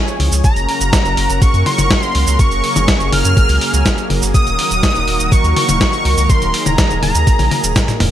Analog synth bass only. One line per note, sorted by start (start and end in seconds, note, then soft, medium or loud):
0.20 0.30 C#2 medium
0.32 0.42 C#2 medium
0.56 0.66 F#1 medium
0.81 0.91 F#1 medium
1.05 1.15 F#1 medium
1.17 1.27 F#1 medium
1.30 1.39 F#1 medium
1.54 1.64 F#2 medium
1.78 1.88 F#1 medium
2.15 2.25 C#2 medium
2.27 2.37 C#2 medium
2.52 2.61 F#1 medium
2.76 2.86 F#1 medium
3.00 3.10 F#1 medium
3.12 3.22 F#1 medium
3.25 3.35 F#2 medium
3.49 3.59 C#2 medium
3.73 3.83 C#2 medium
4.10 4.20 F#1 medium
4.22 4.32 F#1 medium
4.47 4.56 D#1 medium
4.71 4.81 D#1 medium
4.95 5.05 D#1 medium
5.08 5.17 D#1 loud
5.20 5.30 D#1 medium
5.44 5.54 D#2 medium
5.69 5.78 D#1 medium
6.05 6.15 C#2 medium
6.17 6.27 C#2 medium
6.42 6.52 D#1 medium
6.66 6.76 D#1 medium
6.90 7.00 D#1 medium
7.02 7.12 D#1 loud
7.15 7.25 D#2 medium
7.39 7.49 A#1 medium
7.64 7.73 D#1 medium
8.00 8.10 D#1 medium